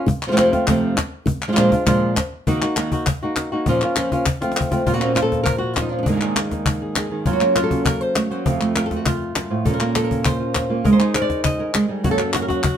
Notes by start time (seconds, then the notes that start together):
0.06 muted nylon-string guitar stroke, cajon bass
0.22 clap
0.27 C3 F3 A3 C4 F4
0.32 C3 F3 A3 C4 F4
0.36 F2 C3 F3 A3 C4 F4, cajon slap, clap
0.53 F3 A3 C4 F4, cajon bass, cajon slap
0.67 F2 C3 F3 A3 C4 F4, cajon bass, clap
0.97 muted nylon-string guitar stroke, cajon bass, cajon slap, clap
1.26 muted nylon-string guitar stroke, cajon bass
1.42 clap
1.48 F3 G#3 D4 F4
1.52 F3 G#3 D4 F4
1.57 A#2 F3 G#3 D4 F4, cajon slap, clap
1.72 G#3 D4 F4, cajon bass
1.86 A#2 F3 G#3 D4 F4, cajon bass, clap
2.17 muted nylon-string guitar stroke, cajon bass, cajon slap, clap
2.47 D#3 A#3 D#4 F#4, cajon bass
2.62 A#3 D#4 F#4, cajon slap, clap
2.76 D#3 A#3 D#4 F#4, cajon slap, clap
2.92 A#3 D#4 F#4, cajon bass
3.06 muted nylon-string guitar stroke, cajon bass, clap
3.22 A#3 D#4 F#4, cajon slap
3.36 cajon slap, clap
3.52 A#3 D#4 F#4
3.66 A#2 F3 A#3 C#4 F4, cajon bass
3.81 A#3 C#4 F4, clap
3.96 F3 A#3 C#4 F4, cajon slap, clap
4.12 A#3 C#4 F4, cajon bass
4.26 muted nylon-string guitar stroke, cajon bass, clap
4.41 F3 A3 C4 F4, cajon slap
4.52 cajon slap
4.57 clap
4.61 cajon bass
4.71 F3 A3 C4 F4, cajon bass
4.87 A#2 F3 A#3 C#4 F4, cajon bass
4.93 F3 A#3 C#4 F4 F#4
4.97 F3 A#3 C#4 F4
5.01 A#2 F3 A#3 C#4 F4, clap
5.15 A#3 C#4 F4, cajon slap, clap
5.22 A4
5.32 A#3, cajon bass, cajon slap
5.43 A#4, cajon bass, clap
5.58 F#4, cajon slap
5.73 F3 A#3 F4, cajon bass, cajon slap, clap
5.78 C#4 D#4 F4
5.89 F3 C#4 D4 F4
5.93 A#3
5.99 D#4
6.03 G#2 A#2 D#3 D4, cajon bass
6.07 G#2 D#3 G#3 A#3 D#4 G#4
6.12 A#2 D#3 G#3 D#4 G#4
6.16 A#2 D#3 G#3 D#4 G#4
6.21 G#2 A#2 D#3 G#3 D#4 G#4, clap
6.36 D#3 G#3 A#3 D#4 G#4, cajon slap, clap
6.51 A#3, cajon bass, cajon slap
6.66 A#3, muted nylon-string guitar stroke, cajon bass, clap
6.82 G#4
6.96 D#3 G#3 D#4 G#4, cajon slap, clap
7.11 D#3 G#3 D#4 G#4
7.26 F#2 C#3 F#3 A#3 C#4 F4 F#4, cajon bass
7.33 F#4
7.41 A#3, clap
7.56 F#3 A#3 C#4 F4 F#4, cajon slap, clap
7.63 A4
7.70 F#3 A#3 C#4 F#4, cajon bass
7.85 A#4, muted nylon-string guitar stroke, cajon bass, clap
8.01 C5
8.16 A3 C#5, cajon slap, clap
8.30 F#3 A#3 C#4 F#4 C5
8.45 F2 C3 F3 A3 C4 F4, cajon bass
8.61 A3, cajon slap, clap
8.75 F3 A3 C4 F4 A#4, cajon slap, clap
8.86 A4
8.90 F3 A3 C4 F4, cajon bass, cajon slap
8.96 F#4
9.06 F4, muted nylon-string guitar stroke, cajon bass, clap
9.22 cajon slap
9.36 F#2, cajon slap, clap
9.50 A2 F3 A3 C4 F4
9.65 A#2 F3 A#3 C#4 F4 A4, cajon bass
9.74 A#4
9.80 A#3 C#4 F4, clap
9.95 F3 A#3 C#4 F4 A4, cajon slap, clap
10.04 A#4
10.11 C#4, cajon bass
10.25 C5, cajon bass, clap
10.40 A#3 C#4 F4, cajon slap
10.55 F4, cajon bass, cajon slap, clap
10.69 A#3 C#4 F4
10.84 G#2 A#2 D#3 G#3 D#4 G#4 A#4, cajon bass
10.93 C5
10.99 D#3 G#3 D#4 G#4, clap
11.14 D#3 G#3 D#4 G#4 A#4, cajon slap, clap
11.22 D5
11.30 cajon bass, cajon slap
11.44 D#5, muted nylon-string guitar stroke, cajon bass, clap
11.58 D#3 G#3 D#4 G#4 A#4
11.74 G#3, cajon slap, clap
11.88 D#3 G3 G#3 D#4 G#4
12.03 F#2 C#3 F#3 A#3 C#4 F#4, cajon bass
12.11 A4
12.18 F#3 A#3 C#4 F#4, cajon slap, clap
12.33 F#3 A#3 C#4 F#4, cajon slap, clap
12.42 A#4
12.48 F#3 A#3 C#4 F#4, cajon bass, cajon slap
12.63 F#4, muted nylon-string guitar stroke, cajon bass, clap